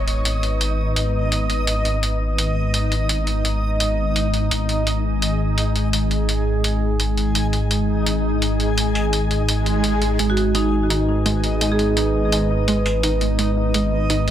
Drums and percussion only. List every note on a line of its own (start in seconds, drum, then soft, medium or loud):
0.08 closed hi-hat soft
0.25 closed hi-hat medium
0.43 closed hi-hat soft
0.61 closed hi-hat medium
0.96 closed hi-hat medium
1.32 closed hi-hat medium
1.50 closed hi-hat soft
1.67 closed hi-hat medium
1.85 closed hi-hat soft
2.03 closed hi-hat medium
2.38 closed hi-hat medium
2.74 closed hi-hat medium
2.92 closed hi-hat soft
3.09 closed hi-hat medium
3.27 closed hi-hat soft
3.45 closed hi-hat medium
3.80 closed hi-hat medium
4.16 closed hi-hat medium
4.34 closed hi-hat soft
4.51 closed hi-hat medium
4.69 closed hi-hat soft
4.87 closed hi-hat medium
5.22 closed hi-hat medium
5.58 closed hi-hat medium
5.76 closed hi-hat soft
5.93 closed hi-hat medium
6.11 closed hi-hat soft
6.29 closed hi-hat medium
6.64 closed hi-hat medium
7.00 closed hi-hat medium
7.17 closed hi-hat soft
7.35 closed hi-hat medium
7.53 closed hi-hat soft
7.71 closed hi-hat medium
8.06 closed hi-hat medium
8.42 closed hi-hat medium
8.60 closed hi-hat soft
8.78 closed hi-hat medium
8.95 closed hi-hat soft
9.13 closed hi-hat medium
9.31 closed hi-hat soft
9.49 closed hi-hat medium
9.66 closed hi-hat soft
9.84 closed hi-hat medium
10.02 closed hi-hat soft
10.19 closed hi-hat medium
10.37 closed hi-hat soft
10.55 closed hi-hat medium
10.90 closed hi-hat medium
11.26 closed hi-hat medium
11.44 closed hi-hat soft
11.61 closed hi-hat medium
11.79 closed hi-hat soft
11.97 closed hi-hat medium
12.32 closed hi-hat medium
12.68 closed hi-hat medium
12.86 closed hi-hat soft
13.03 closed hi-hat medium
13.21 closed hi-hat soft
13.39 closed hi-hat medium
13.74 closed hi-hat medium
14.10 closed hi-hat medium